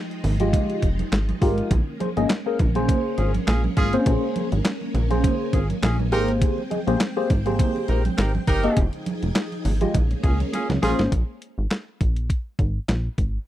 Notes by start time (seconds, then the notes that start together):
Already playing: F3 G#3 D#4 G5
0.11 closed hi-hat
0.24 G#1, open hi-hat, low conga
0.40 G#3 F4 G4 D#5, closed hi-hat, high conga
0.53 kick, closed hi-hat, low conga
0.70 closed hi-hat
0.82 F1, kick, closed hi-hat
0.99 closed hi-hat, high conga
1.12 G#1, snare, clap, closed hi-hat
1.29 closed hi-hat, muted conga, high conga
1.41 G#1 G#3 F4 G4 A#4, kick, open hi-hat
1.58 closed hi-hat
1.71 A#1 G#3 A#3 C#4, kick, closed hi-hat, muted conga, low conga
2.00 G#4 C5, closed hi-hat, high conga
2.17 G#1 A#3 C#4 G#4 D#5, closed hi-hat, high conga
2.30 snare, clap, closed hi-hat, muted conga
2.46 A#3 C#4 G#4 A#4
2.59 A#1, kick, closed hi-hat, low conga
2.75 A#3 C#4 G#4 C5, closed hi-hat, high conga
2.89 kick, closed hi-hat, muted conga, low conga
3.18 G#1 C#4 F4 G#4, closed hi-hat
3.34 closed hi-hat, high conga
3.47 A#1 C#4 F4 G#4, snare, clap, closed hi-hat, muted conga
3.64 muted conga, high conga
3.77 G#1 C#4 F4 G#4, kick, closed hi-hat
3.93 A#3 C4 G#4 C5, closed hi-hat
4.00 C#4
4.06 A#1, kick, closed hi-hat, low conga
4.36 closed hi-hat, high conga
4.52 G#1, closed hi-hat, high conga
4.65 snare, clap, closed hi-hat, muted conga
4.81 muted conga
4.94 A#1, closed hi-hat, low conga
5.10 A#3 C#4 G#4 C5, closed hi-hat, high conga
5.24 kick, closed hi-hat, muted conga, low conga
5.53 G#1 C#4 F4 G#4, kick, closed hi-hat
5.70 closed hi-hat, high conga
5.83 A#1 C#4 F4 G#4, snare, clap, closed hi-hat, muted conga
5.99 muted conga, high conga
6.12 G#1 A#3 C4 D#4 G4 G#4 A#4 C5 G5, closed hi-hat
6.28 closed hi-hat
6.42 kick, closed hi-hat, low conga
6.58 muted conga
6.71 G#4 D#5, closed hi-hat, high conga
6.87 A#1 A#3 G4 G#4 C5, closed hi-hat, high conga
7.00 snare, clap, closed hi-hat
7.17 A#3 G4 G#4 C5, muted conga
7.30 G#1, kick, closed hi-hat, low conga
7.46 A#3 G4 G#4 C5, closed hi-hat, high conga
7.59 kick, closed hi-hat, muted conga, low conga
7.76 muted conga
7.88 A#1 D#4 G4 A#4, closed hi-hat
8.05 closed hi-hat, high conga
8.18 G#1 D#4 G4 A#4, snare, clap, closed hi-hat, muted conga
8.35 muted conga, high conga
8.47 G1 D#4 G4 A#4, kick, closed hi-hat
8.63 A#3 G4 G#4 D#5, closed hi-hat
8.77 F1 F3 D#4 G#4, kick, closed hi-hat, low conga
8.93 closed hi-hat
9.06 closed hi-hat, high conga
9.23 F1, closed hi-hat, high conga
9.35 snare, clap, closed hi-hat
9.52 closed hi-hat, muted conga
9.65 G#1, open hi-hat, low conga
9.81 G#3 F4 G4 D#5, closed hi-hat, high conga
9.94 A#1 G#3 A#3 C#4, kick, closed hi-hat, low conga
10.11 closed hi-hat, muted conga
10.23 C#2 C#4 F4 G#4, kick, closed hi-hat
10.40 closed hi-hat, high conga
10.53 C#4 F4 G#4, snare, closed hi-hat, muted conga
10.69 C#2, snare, closed hi-hat, muted conga, high conga
10.82 A#1 A#3 C#4 F4 G#4 C5, snare, open hi-hat
10.99 G#1, snare, closed hi-hat
11.12 A#1, kick, closed hi-hat
11.42 closed hi-hat
11.58 G#1
11.71 snare, clap, closed hi-hat
12.01 A#1, kick, closed hi-hat
12.16 closed hi-hat
12.30 kick, closed hi-hat
12.59 G#1, kick, closed hi-hat
12.89 A#1, snare, clap, closed hi-hat
13.18 G#1, kick, closed hi-hat